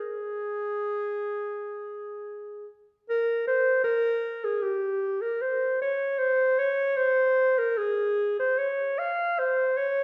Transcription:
0.00 2.67 G#4 medium
3.09 3.46 A#4 loud
3.47 3.84 C5 medium
3.84 4.46 A#4 loud
4.45 4.64 G#4 medium
4.62 5.23 G4 medium
5.21 5.43 A#4 medium
5.42 5.81 C5 medium
5.82 6.20 C#5 medium
6.19 6.60 C5 loud
6.59 6.98 C#5 medium
6.97 7.60 C5 loud
7.58 7.79 A#4 medium
7.78 8.37 G#4 medium
8.39 8.60 C5 medium
8.58 9.00 C#5 medium
8.99 9.41 F5 medium
9.39 9.79 C5 medium
9.77 10.04 C#5 medium

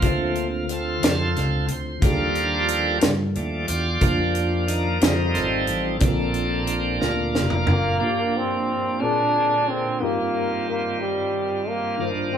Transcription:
0.00 0.99 D2 medium
0.00 0.99 D3 medium
0.00 0.47 F3 soft
0.00 0.47 A3 soft
0.00 0.66 A#3 soft
0.00 1.98 C4 soft
0.00 1.98 D4 soft
0.00 0.70 F4 medium
0.00 1.99 F4 soft
0.00 kick medium
0.00 closed hi-hat medium
0.04 0.48 C4 medium
0.04 2.00 A4 soft
0.04 2.00 C5 medium
0.35 closed hi-hat soft
0.69 1.66 C4 medium
0.69 1.66 F4 medium
0.69 1.34 A4 medium
0.69 closed hi-hat medium
1.03 1.33 F2 medium
1.03 snare loud
1.03 closed hi-hat medium
1.35 1.67 C#2 medium
1.35 1.70 A4 medium
1.35 snare soft
1.35 closed hi-hat soft
1.68 2.00 D2 medium
1.68 2.05 C5 medium
1.68 closed hi-hat medium
2.00 2.98 D#2 medium
2.00 2.98 D#3 soft
2.00 2.98 F3 soft
2.00 2.98 G3 soft
2.00 3.97 D4 medium
2.00 3.98 D#4 soft
2.00 3.98 F4 soft
2.00 2.98 F4 medium
2.00 2.99 G4 medium
2.00 3.99 G4 soft
2.00 2.98 A4 soft
2.00 2.99 A#4 medium
2.00 2.99 D5 medium
2.00 kick loud
2.00 closed hi-hat medium
2.05 2.10 G#4 soft
2.12 4.03 A4 medium
2.35 closed hi-hat soft
2.68 closed hi-hat medium
3.01 3.34 G2 medium
3.01 snare loud
3.01 closed hi-hat medium
3.35 3.67 D#2 medium
3.35 3.66 F3 soft
3.35 3.66 G3 soft
3.35 3.66 A3 soft
3.35 3.66 D5 soft
3.35 closed hi-hat soft
3.67 4.00 E2 medium
3.67 4.64 F4 medium
3.67 4.65 G4 medium
3.67 4.31 D5 loud
3.67 closed hi-hat medium
4.01 4.98 F2 loud
4.01 4.98 F3 medium
4.01 5.01 A#3 medium
4.01 4.98 A#3 soft
4.01 5.02 D4 medium
4.01 4.98 D4 medium
4.01 5.01 F4 medium
4.01 5.02 A#4 medium
4.01 5.03 D5 medium
4.01 kick medium
4.01 closed hi-hat medium
4.35 closed hi-hat soft
4.67 5.64 D#3 medium
4.67 5.38 A#4 loud
4.67 closed hi-hat medium
5.00 5.33 F2 medium
5.00 5.97 F3 soft
5.00 5.97 G3 soft
5.00 5.99 C4 medium
5.00 5.33 D#4 medium
5.00 6.02 D#4 soft
5.00 6.01 F4 medium
5.00 6.03 A4 soft
5.00 snare loud
5.00 closed hi-hat medium
5.04 6.03 C5 medium
5.34 5.66 G#1 medium
5.34 5.97 C4 medium
5.34 5.97 D#4 medium
5.34 6.01 A4 medium
5.34 snare soft
5.34 closed hi-hat soft
5.67 5.99 A1 medium
5.67 closed hi-hat medium
6.00 6.97 A#1 medium
6.00 6.98 A#2 medium
6.00 7.97 A#3 medium
6.00 7.96 C4 medium
6.00 6.98 C4 medium
6.00 7.97 D4 medium
6.00 7.00 D4 medium
6.00 7.98 F4 medium
6.00 6.65 A4 medium
6.00 kick loud
6.00 closed hi-hat medium
6.04 7.98 A4 soft
6.04 7.99 A#4 medium
6.34 closed hi-hat soft
6.67 closed hi-hat medium
7.01 7.37 D2 medium
7.01 7.97 D4 medium
7.01 7.97 F4 medium
7.01 7.72 A#4 medium
7.01 snare medium
7.35 7.66 F1 medium
7.35 snare medium
7.50 mid tom medium
7.67 7.99 F#1 medium
7.67 floor tom medium
7.71 8.39 A#3 medium
8.00 8.98 G2 soft
8.00 9.00 F3 medium
8.00 8.98 A#3 medium
8.00 9.01 A#3 medium
8.00 9.01 D4 medium
8.00 9.01 D4 soft
8.00 9.01 F4 soft
8.00 9.00 G4 medium
8.00 9.02 G4 soft
8.04 9.02 A#4 medium
8.37 9.04 C4 medium
9.00 9.97 A#2 soft
9.00 10.00 D3 medium
9.00 10.00 A#3 soft
9.00 9.99 C4 soft
9.00 9.99 C4 medium
9.00 9.08 C#4 soft
9.00 9.71 D4 medium
9.00 10.01 F4 soft
9.00 10.00 G#4 medium
9.00 10.02 G#4 soft
9.00 10.02 A#4 medium
9.08 10.04 D4 soft
9.70 10.04 C4 medium
10.00 11.96 G2 medium
10.00 10.97 G2 medium
10.00 11.95 D#3 medium
10.00 11.96 G3 medium
10.00 10.68 A#3 medium
10.00 11.95 C4 medium
10.00 11.95 D#4 medium
10.00 10.07 D#4 medium
10.00 11.96 F4 soft
10.00 11.97 G4 soft
10.05 11.99 F4 medium
10.05 11.97 A#4 medium
10.70 10.99 A#3 medium
11.01 11.71 G3 medium
11.69 12.07 A#3 medium
11.97 12.38 G2 medium
11.97 12.38 D#3 medium
11.97 12.38 A#3 medium
11.97 12.38 D4 medium
11.97 12.38 F4 soft
11.97 12.38 F4 medium
11.97 12.38 A#4 soft
12.03 12.38 C5 medium
12.33 12.38 C4 medium

